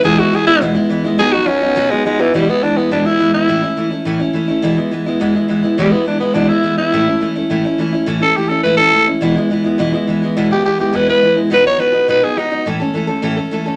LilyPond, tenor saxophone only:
\new Staff \with { instrumentName = "Tenor saxophone" } { \time 4/4 \key e \major \tempo 4 = 209 gis'8 fis'8 gis'8 e'8 r2 | gis'8 fis'8 cis'4. gis8 gis8 e8 | g8 b8 d'8 b8 d'8 e'4 e'8~ | e'4. r2 r8 |
r1 | g8 b8 d'8 b8 d'8 e'4 e'8~ | e'4. r2 r8 | r8 a'8 g'8 a'8 b'8 a'4 r8 |
r1 | r8 g'8 g'8 g'8 b'8 b'4 r8 | b'8 cis''8 b'4 b'8 gis'8 dis'4 | r1 | }